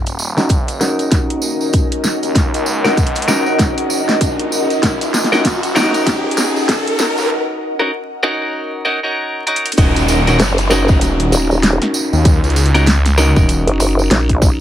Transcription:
Already playing: C#4, riser
0.06 D#1, closed hi-hat, tambourine
0.19 tambourine
0.37 C#4 D#4 F#4 A#4, snare, tambourine
0.48 F#1 D#5, kick, closed hi-hat, tambourine
0.68 closed hi-hat, tambourine
0.81 C#4 D#4 F#4 A#4, snare, tambourine
0.99 closed hi-hat, tambourine
1.11 D#1, kick, snare, closed hi-hat, tambourine
1.30 closed hi-hat
1.42 D#1, tambourine
1.61 F#5, tambourine
1.73 kick, closed hi-hat, tambourine
1.92 closed hi-hat
2.04 snare, tambourine
2.23 D#2, closed hi-hat, tambourine
2.35 kick, snare, closed hi-hat, tambourine
2.54 C#2, closed hi-hat, tambourine
2.66 tambourine
2.84 C#4 D#4 F#4 A#4, snare, tambourine
2.97 kick, closed hi-hat, tambourine
3.07 closed hi-hat
3.15 closed hi-hat, tambourine
3.22 closed hi-hat
3.28 C#4 D#4 F#4 A#4, snare, tambourine
3.46 D#1, tambourine
3.59 kick, snare, closed hi-hat, tambourine
3.77 F#1, closed hi-hat
3.90 tambourine
4.09 snare, tambourine
4.21 A#1, kick, closed hi-hat, tambourine
4.39 closed hi-hat
4.52 tambourine
4.70 closed hi-hat, tambourine
4.83 kick, snare, closed hi-hat, tambourine
5.01 D#1, closed hi-hat, tambourine
5.14 snare, tambourine
5.24 snare
5.32 C#4 D#4 F#4 A#4, snare, tambourine
5.45 F#1, kick, snare, closed hi-hat, tambourine
5.63 closed hi-hat, tambourine
5.75 C#4 D#4 F#4 A#4, snare, tambourine
5.79 snare
5.82 snare
5.85 snare
5.91 snare, closed hi-hat, tambourine
6.07 D#1, kick, snare, closed hi-hat, tambourine
6.31 closed hi-hat
6.37 D#1, snare, tambourine
6.56 tambourine
6.68 kick, snare, closed hi-hat, tambourine
6.87 closed hi-hat
6.99 snare, tambourine
7.18 D#2, tambourine
7.80 C#4 D#4 F#4 A#4
8.23 C#4 D#4 F#4 A#4
8.85 C#4 D#4 F#4 A#4
9.03 C#4 D#4 F#4 A#4
9.47 C#4 D#4 F#4 A#4, closed hi-hat
9.56 closed hi-hat
9.66 closed hi-hat
9.72 closed hi-hat
9.77 D#1 C#4 D#4 F#4 A#4, kick, closed hi-hat, tambourine, downlifter
9.96 D#1, closed hi-hat, tambourine
10.08 open hi-hat, tambourine
10.27 C#4 D#4 F#4 A#4, closed hi-hat, tambourine
10.39 F#1, snare, closed hi-hat, tambourine
10.58 closed hi-hat, tambourine
10.70 C#4 D#4 F#4 A#4, tambourine
10.88 kick, tambourine
11.01 D#1, closed hi-hat, tambourine
11.20 closed hi-hat
11.32 D#1, open hi-hat, tambourine
11.51 tambourine
11.63 snare, closed hi-hat, tambourine
11.82 snare, closed hi-hat
11.94 tambourine
12.13 D#2, tambourine
12.25 kick, closed hi-hat, tambourine
12.44 C#2, closed hi-hat, tambourine
12.50 closed hi-hat
12.56 closed hi-hat, open hi-hat, tambourine
12.66 closed hi-hat
12.74 C#4 D#4 F#4 A#4, closed hi-hat, tambourine
12.87 snare, closed hi-hat, tambourine
13.05 snare, closed hi-hat, tambourine
13.18 C#4 D#4 F#4 A#4, tambourine
13.36 D#1, kick, tambourine
13.49 closed hi-hat, tambourine
13.67 F#1, closed hi-hat
13.80 open hi-hat, tambourine
13.99 tambourine
14.10 A#1, snare, closed hi-hat, tambourine
14.29 kick, closed hi-hat
14.42 kick, snare, tambourine

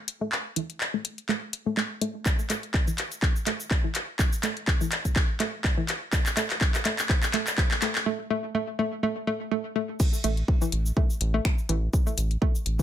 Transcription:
0.08 closed hi-hat
0.21 A3
0.32 clap
0.56 E3, closed hi-hat
0.70 closed hi-hat
0.81 clap
0.94 A3
1.05 closed hi-hat
1.18 closed hi-hat
1.29 A3, clap
1.53 closed hi-hat
1.66 A3
1.77 A3, clap
2.01 A3, closed hi-hat
2.26 kick, clap, shaker
2.39 shaker
2.50 A3, clap, closed hi-hat, shaker
2.63 closed hi-hat
2.74 kick, clap
2.87 E3, shaker
2.98 clap, closed hi-hat
3.12 closed hi-hat, shaker
3.22 kick, clap
3.36 shaker
3.47 A3, clap, closed hi-hat
3.60 shaker
3.71 kick, clap
3.84 E3
3.95 clap, closed hi-hat
4.19 kick, clap, shaker
4.33 shaker
4.43 A3, clap, closed hi-hat, shaker
4.57 closed hi-hat
4.68 kick, clap
4.81 E3, shaker
4.92 clap, closed hi-hat
5.05 kick, closed hi-hat, shaker
5.16 kick, clap
5.40 A3, clap, closed hi-hat
5.64 kick, clap
5.78 E3
5.89 clap, closed hi-hat
6.13 kick, clap, shaker
6.26 clap, shaker
6.37 A3, clap, closed hi-hat, shaker
6.50 clap, closed hi-hat
6.61 kick, clap
6.74 clap, shaker
6.85 A3, clap, closed hi-hat
6.99 clap, closed hi-hat, shaker
7.09 kick, clap
7.23 clap, shaker
7.34 A3, clap, closed hi-hat
7.47 clap, shaker
7.58 kick, clap
7.71 clap
7.82 A3, clap, closed hi-hat
7.95 clap
8.06 A3
8.30 A3
8.55 A3
8.79 A3
9.03 A3
9.27 A3
9.51 A3
9.76 A3
10.00 kick, crash, shaker
10.13 shaker
10.24 A1 A3, closed hi-hat, shaker
10.37 closed hi-hat
10.48 kick
10.61 E3, shaker
10.72 A1, closed hi-hat
10.86 shaker
10.97 A3, kick
11.10 shaker
11.21 A1, closed hi-hat
11.34 A3
11.45 finger snap, kick
11.58 shaker
11.69 A1 E3, closed hi-hat
11.93 kick, shaker
12.07 A3, shaker
12.18 A1, closed hi-hat, shaker
12.31 closed hi-hat
12.42 A3, kick
12.55 shaker
12.66 A1, closed hi-hat
12.79 E3, kick, shaker

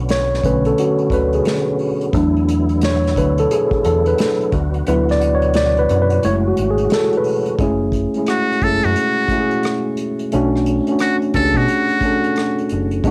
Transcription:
Already playing: B1 D3 F#3 B3 C#4
0.09 C#5, snare, closed hi-hat
0.34 snare
0.43 B1 D3 A3 C#4 B4, kick, closed hi-hat
0.65 A4, closed hi-hat
0.78 F#4, closed hi-hat
0.98 closed hi-hat
1.10 D2 B4, kick, closed hi-hat
1.33 G#4, closed hi-hat
1.45 snare, closed hi-hat
1.79 open hi-hat
2.01 closed hi-hat
2.13 E2 D3 F#3 A3 D4 E4, kick, closed hi-hat
2.37 closed hi-hat
2.49 closed hi-hat
2.69 closed hi-hat
2.81 C#5, snare, closed hi-hat
3.04 snare, closed hi-hat
3.16 D2 B4, kick, closed hi-hat
3.38 A4, closed hi-hat
3.51 G#4, closed hi-hat
3.71 kick
3.84 E2 A4, closed hi-hat
4.06 B4, closed hi-hat
4.18 snare, closed hi-hat
4.41 closed hi-hat
4.52 D2 F#4, kick, closed hi-hat
4.74 closed hi-hat
4.87 D2 F#3 B3 E4 B4, closed hi-hat
5.09 D5, snare, closed hi-hat
5.21 closed hi-hat
5.35 C#5
5.42 closed hi-hat
5.54 D5, snare, closed hi-hat
5.77 B4, closed hi-hat
5.89 F#2, closed hi-hat
6.02 B4
6.10 closed hi-hat
6.23 F#1 E3 G#3 A3 C#4 E4 C#5, closed hi-hat
6.48 F#4
6.57 G#1, closed hi-hat
6.71 G#4
6.78 closed hi-hat
6.90 A4, snare, closed hi-hat
7.13 closed hi-hat
7.17 B4
7.24 open hi-hat
7.46 closed hi-hat
7.59 F#1 G#3 C#4 E4, kick, closed hi-hat
7.63 A3 G#4
7.92 kick, closed hi-hat
8.14 G#3 C#4 E4, closed hi-hat
8.19 A3 G#4
8.26 F#4, cross-stick, closed hi-hat
8.51 cross-stick
8.62 F#1 G#3 C#4 E4 A4, kick, closed hi-hat
8.66 A3 G#4
8.83 F#2 F#4, closed hi-hat
8.96 closed hi-hat
9.28 A3 C#4, kick, closed hi-hat
9.32 E4 F#4
9.40 G#4
9.51 closed hi-hat
9.63 cross-stick, closed hi-hat
9.97 closed hi-hat
10.19 closed hi-hat
10.32 B1 A3 C#4 D4 F#4, closed hi-hat
10.56 cross-stick
10.66 closed hi-hat
10.87 A3 C#4 D4, closed hi-hat
10.91 F#4
10.99 F#4, cross-stick, closed hi-hat
11.22 closed hi-hat
11.34 C#2 A3 C#4 D4 A4, kick, closed hi-hat
11.38 G4
11.44 G#4
11.54 B2 F#4, kick, closed hi-hat
11.68 closed hi-hat
11.89 closed hi-hat
12.01 A3 C#4 D4, kick, closed hi-hat
12.06 A4
12.24 closed hi-hat
12.36 cross-stick, closed hi-hat
12.59 closed hi-hat
12.69 F#1, closed hi-hat
12.91 closed hi-hat
13.04 G#1 D3 G#3 A#3 B3 D4 F#4, kick, closed hi-hat

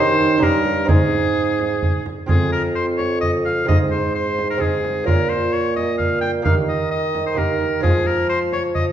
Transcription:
Already playing: D#3 C#4 D#4 G4 C5
0.19 frame drum
0.38 G2 C#4 D#4 G4
0.42 A#4, frame drum
0.65 frame drum
0.85 G#2 C4 D#4 G#4, frame drum
0.89 G#4
1.60 frame drum
1.83 frame drum
2.06 frame drum
2.26 F2 C4 F4 G#4, frame drum
2.52 A#4
2.75 C5
2.97 C#5, frame drum
3.21 D#5, frame drum
3.45 F5, frame drum
3.65 G#2 C4 D#4 G#4 D#5, frame drum
3.91 C5
4.15 C5
4.39 frame drum
4.50 A#4
4.57 C4 D#4 G#4
4.62 frame drum
4.85 frame drum
5.04 A#2 A#3 C#4 F4 A#4, frame drum
5.29 C5
5.52 C#5
5.76 D#5, frame drum
5.98 F5, frame drum
6.21 G5, frame drum
6.42 D#3 A#3 D#4 G4 F5, frame drum
6.68 D#5
6.91 D#5
7.15 frame drum
7.26 C5
7.34 A#3 D#4 G4 A#4, frame drum
7.61 frame drum
7.80 F3 G#3 C4 F4 G#4, frame drum
8.07 A#4
8.29 C5
8.52 C#5, frame drum
8.75 D#5, frame drum

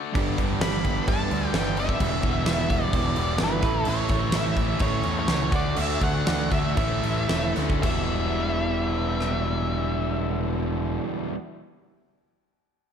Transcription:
Already playing: D3 A3 D4 F#4
0.14 G1 G2 D3 G3 B3 D4 G4 B4 D5, kick, crash
0.37 G1 G2 D3 G3 B3 D4 G4, kick, crash
0.42 G3
0.60 G1 G2 D3 G3 B3 D4 G4 B4 D5 B5, snare, crash
0.65 G4
0.84 G2 D3 G3 B3 D4 G4, kick, crash
1.07 G1 G2 D3 G3 B3 D4 G4 B4 E5 A5, kick, crash
1.30 D2 G2 D3 G3 B3 D4 G4, crash
1.53 G1 G2 D3 G3 B3 D4 G4 B4 E5 G5, snare, crash
1.76 G2 D3 G3 B3 D4 G4 E5, crash
1.89 kick
2.00 E1 E2 B2 E3 G3 B3 E4 G4 B4 E5, kick, crash
2.22 E1 E2 B2 E3 G3 B3 E4, kick, crash
2.46 E1 E2 B2 E3 G3 B3 E4 G4 B4 E5, snare, crash
2.68 E1 E2 B2 E3 G3 B3 E4, kick, crash
2.85 D5
2.93 E1 E2 B2 E3 G3 B3 E4 G4 B4 C#5, kick, crash
3.15 E1 E2 B2 G3 B3 E4, crash
3.20 E3
3.38 G1 E2 B2 E3 G3 B3 E4 G4 B4 G5, snare, crash
3.44 B4
3.62 A1 A2 E3 A3 C#4 E4 A4 C#5 E5, kick, snare, crash
3.67 A2
3.85 A1 A2 E3 A3 C#5, crash
3.90 C#4 E4
4.09 A1 A2 E3 C#4 E4, kick, crash
4.13 A3
4.32 A1 A2 E3 A3 C#4 E4 A4 C#5 E5, snare, crash
4.37 E5
4.54 A2 E3 A3 C#4 E4, kick, crash
4.59 A3
4.79 A1 A2 E3 A3 C#4 E4 A4 C#5 E5, kick, crash
4.83 E4
5.03 E2 A2 E3 C#4 E4, crash
5.08 A3
5.19 C#5
5.27 C#2 A2 E3 A3 C#4 E4 A4 C#5 F#5, snare, crash
5.52 D2 D3 A3 D4 F#4 A4 D5 F#5, kick, snare, crash
5.56 D5
5.75 D2 D3 A3 D4 F#4 E5, crash
6.00 D2 D3 A3 D4 F#4 F#5, kick, crash
6.25 D2 D3 A3 D4 F#4 A4 D5 F#5, snare, crash
6.49 D2 D3 A3 D4 F#4 E5, kick, crash
6.54 A3
6.75 A1 A2 E3 A3 E4 A4 C#5 E5, kick, crash
6.79 C#4 E4
7.02 A1 A2 E3 A3 C#4 E4, crash
7.28 E1 A2 E3 A3 C#4 E4 A4 C#5 E5, snare, crash
7.55 D2 A2 E3 A3 C#4 E4, snare, crash
7.70 kick
7.80 E1 E2 B2 E3 G4 B4 E5, kick, crash
7.84 G3 B3 E4 E5
9.21 cross-stick

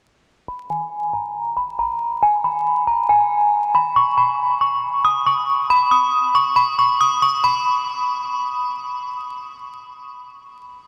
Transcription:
0.48 B5
0.70 G#5
1.13 A#5
1.57 B5
1.79 A#5
2.23 G#5
2.44 B5
2.87 A#5
3.09 G#5
3.75 B5
3.96 C#6
4.18 B5
4.61 C#6
5.05 D#6
5.26 C#6
5.70 B5
5.91 D#6
6.35 C#6
6.56 B5
6.79 C#6
7.01 D#6
7.22 C#6
7.44 B5

